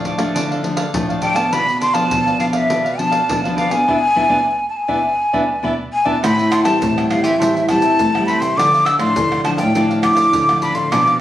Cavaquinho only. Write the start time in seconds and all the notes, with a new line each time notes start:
0.06 D4 A4 D5 F5
0.18 A4 D5 F5
0.35 D4 A4 D5 F5
0.51 A4 D5 F5
0.64 muted cavaquinho stroke
0.76 A4 D5 F5
1.09 A4 D5 F5
1.22 D4 A4 D5 F5
1.35 A4 D5 F5
1.52 D4 B4 D5 F5
1.68 muted cavaquinho stroke
1.80 D4 B4 D5 F5
1.94 B4 D5 F5
2.27 B4 D5 F5
2.39 D4 B4 D5 F5
2.53 B4 D5 F5
2.69 D4 B4 D5 F5
2.84 B4 D5 F5
2.99 muted cavaquinho stroke
3.11 B4 D5 F5
3.44 B4 D5 F5
3.56 D4 B4 D5 F5
3.70 B4 D5 F5
3.88 B4 D5 E5
4.16 B4 D5 E5
4.30 B4 D5 E5
4.88 B4 D5 E5
5.33 B4 D5 E5
5.64 B4 D5 E5
6.05 B4 D5 E5
6.23 A4 C5 E5 G5
6.38 C5 E5 G5
6.51 A4 C5 E5 G5
6.64 C5 E5 G5
6.97 C5 E5 G5
7.23 C5 E5 G5
7.39 A4 C5 E5 G5
7.55 C5 E5 G5
7.69 muted cavaquinho stroke
7.82 C5 E5 G5
8.14 C5 E5 G5
8.27 A4 C5 E5 G5
8.41 C5 E5 G5
8.57 D4 A4 D5 F5
8.74 A4 D5 F5
8.85 D4 A4 D5 F5
8.98 A4 D5 F5
9.31 A4 D5 F5
9.44 muted cavaquinho stroke
9.57 A4 D5 F5
9.75 D4 A4 D5 F5
9.90 A4 D5 F5
10.03 muted cavaquinho stroke
10.15 A4 D5 F5
10.49 A4 D5 F5
10.62 D4 A4 D5 F5
10.75 A4 D5 F5
10.93 D4 B4 D5 F5
11.08 B4 D5 F5